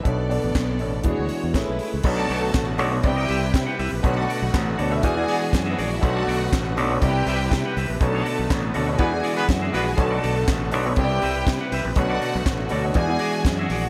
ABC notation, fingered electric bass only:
X:1
M:4/4
L:1/16
Q:1/4=121
K:Bdor
V:1 name="Fingered electric bass" clef=bass
B,,,3 A,,, B,,,2 A,,,2 E,, D,, z E,, A,,, B,,, z C,, | B,,,2 B,,,2 A,,,2 B,,,2 =C,,2 C,,2 =C, z C,, ^A,,, | B,,,2 z B,,, A,,,2 D,,2 E,,2 z2 F,,2 ^A,,,2 | B,,,2 B,,,2 A,,,2 B,,,2 =C,,2 C,,2 =C, z C,, ^A,,, |
B,,,2 z B,,, A,,,2 D,,2 E,,2 z2 F,,2 ^A,,,2 | B,,,2 B,,,2 A,,,2 B,,,2 =C,,2 C,,2 =C, z C,, ^A,,, | B,,,2 z B,,, A,,,2 D,,2 E,,2 z2 F,,2 ^A,,,2 |]